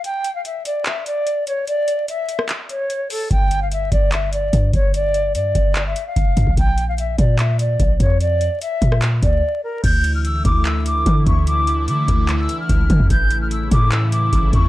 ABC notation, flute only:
X:1
M:4/4
L:1/16
Q:1/4=147
K:Dm
V:1 name="Flute"
g3 f e2 d2 e2 d4 ^c2 | d4 e4 z2 ^c4 A2 | g3 f e2 d2 e2 d4 ^c2 | d4 d4- d e2 f4- f |
g3 f e2 d2 e2 d4 ^c2 | d4 e4 z2 d4 B2 | g'3 f' e'2 d'2 e'2 d'4 ^c'2 | d'4 d'4- d' e'2 f'4- f' |
g'3 f' e'2 d'2 e'2 d'4 ^c'2 |]